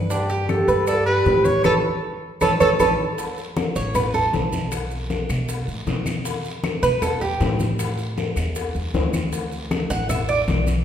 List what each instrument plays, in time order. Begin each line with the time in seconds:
Already playing: upright bass G2
0.10 cuban tres D4, trumpet G4, high bongo, high conga, maracas
0.29 cuban tres G4, high bongo, high conga, maracas
0.49 trumpet A4, high bongo, high conga, claves, maracas
0.68 upright bass G2, cuban tres B4, high conga, maracas
0.87 trumpet A4, cuban tres D5, high bongo, high conga, claves, maracas
1.06 cuban tres G4, trumpet B4, high conga, maracas
1.26 upright bass A2, high bongo, low bongo, high conga, maracas
1.45 trumpet C#5, cuban tres C#5, high bongo, high conga, maracas
1.64 upright bass A1, cuban tres A4 B4 C#5, trumpet A4, low bongo, high conga, claves, maracas
2.41 upright bass A1, cuban tres A4 B4 C#5, trumpet A4, low bongo, high conga, claves, maracas
2.60 upright bass A1, cuban tres A4 B4 C#5, trumpet A4, low bongo, high conga, claves, maracas
2.79 upright bass A1, cuban tres A4 B4 C#5, trumpet A4, low bongo, high conga, claves, maracas
3.18 high bongo, high conga, long guiro, maracas
3.38 high bongo, high conga, maracas
3.57 high bongo, high conga, short guiro, claves, maracas
3.76 upright bass A1, cuban tres C#5, high bongo, high conga, short guiro, maracas
3.95 cuban tres B4, high bongo, high conga, low conga, long guiro, claves, maracas
4.14 cuban tres A4, high conga, low conga, maracas
4.33 upright bass B1, high bongo, low bongo, high conga, short guiro, maracas
4.53 high bongo, high conga, short guiro, maracas
4.72 high bongo, high conga, long guiro, claves, maracas
4.91 high bongo, high conga, maracas
5.10 high bongo, high conga, short guiro, maracas
5.29 upright bass B2, high bongo, high conga, short guiro, claves, maracas
5.49 high bongo, high conga, long guiro, maracas
5.67 upright bass A2, high conga, maracas
5.87 upright bass B2, high bongo, low bongo, high conga, short guiro, maracas
6.06 high bongo, high conga, short guiro, claves, maracas
6.25 high bongo, high conga, long guiro, maracas
6.44 high bongo, high conga, maracas
6.63 high bongo, high conga, short guiro, claves, maracas
6.83 upright bass B2, cuban tres B4, high bongo, high conga, short guiro, maracas
7.02 cuban tres A4, high bongo, high conga, low conga, long guiro, claves, maracas
7.21 cuban tres G4, high conga, low conga, maracas
7.40 upright bass A2, high bongo, low bongo, high conga, short guiro, maracas
7.60 high bongo, high conga, short guiro, maracas
7.79 high bongo, high conga, long guiro, claves, maracas
7.98 high bongo, high conga, maracas
8.18 high bongo, high conga, short guiro, maracas
8.36 upright bass E2, high bongo, short guiro, claves, maracas
8.55 high bongo, high conga, long guiro, maracas
8.75 upright bass E2, high conga, maracas
8.94 upright bass D2, high bongo, low bongo, high conga, short guiro, maracas
9.13 high bongo, high conga, short guiro, claves, maracas
9.33 high bongo, high conga, long guiro, maracas
9.52 high bongo, high conga, maracas
9.71 high bongo, high conga, short guiro, claves, maracas
9.90 upright bass A1, cuban tres F#5, high bongo, high conga, short guiro, maracas
10.09 cuban tres E5, high bongo, high conga, low conga, long guiro, claves, maracas
10.29 cuban tres D5, high conga, maracas
10.48 upright bass B1, high bongo, low bongo, high conga, short guiro, maracas
10.67 high bongo, high conga, short guiro, maracas